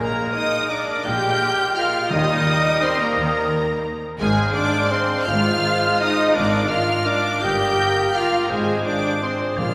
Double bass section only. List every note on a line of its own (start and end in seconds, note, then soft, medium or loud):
0.00 0.28 A#1 loud
1.06 1.35 A#1 loud
2.11 2.40 D#2 loud
3.16 3.45 D#2 loud
4.20 4.48 G#1 loud
5.27 5.57 G#1 loud
6.35 6.64 G#1 loud
7.43 7.73 G1 loud
8.50 8.79 G#1 loud
9.58 9.74 A#1 medium